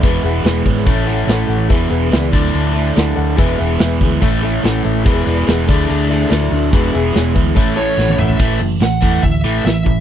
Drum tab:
CC |----------------|----------------|----------------|----------------|
HH |x-x-x-x-x-x-x-x-|x-x-x-x-x-x-x-x-|x-x-x-x-x-x-x-x-|x-x-x-x-x-x-x-x-|
SD |----o--o----o---|----o--o----o---|----o-------o---|----o-------o---|
T1 |----------------|----------------|----------------|----------------|
T2 |----------------|----------------|----------------|----------------|
FT |----------------|----------------|----------------|----------------|
BD |o-----o-o-------|o-----o---------|o-----o-o-------|o-----o---------|

CC |----------------|x---------------|
HH |x-x-x-x-x-x-----|--o-o-o-o-o-o-o-|
SD |----o-------o---|----o-------o---|
T1 |-------------o--|----------------|
T2 |--------------o-|----------------|
FT |---------------o|----------------|
BD |o-----o-o-------|o-----o-o-----o-|